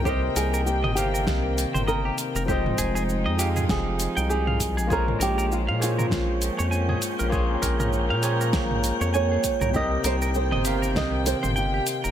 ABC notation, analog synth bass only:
X:1
M:4/4
L:1/16
Q:"Swing 16ths" 1/4=99
K:Bbdor
V:1 name="Analog synth bass" clef=bass
C,, z C,,3 G,,,3 C,,2 z G,,,2 z2 F,,,- | F,,, z F,,,3 F,,3 F,,,2 z C,,4 B,,,- | B,,, z B,,,3 B,,3 B,,,2 z F,,2 z2 B,,,- | B,,, z B,,,3 B,,3 B,,,2 z F,,2 z2 C,,- |
C,, z C,,3 G,,,3 C,,2 z G,,,2 z2 F,,, |]